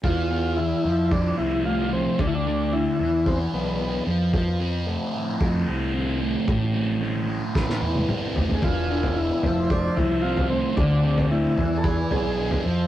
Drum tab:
SD |----------------|----------------|----------------|--------oo------|
T1 |----------------|----------------|----------------|-----------o----|
T2 |----------------|----------------|----------------|------------o---|
FT |----------------|----------------|----------------|--------------oo|
BD |o-------o-------|o-------o-------|o-------o-------|o-------o-------|

SD |----------------|----------------|
T1 |----------------|----------------|
T2 |----------------|----------------|
FT |o--o--o---o--o--|o--o--o---o--o--|
BD |o-------o-------|o-------o-------|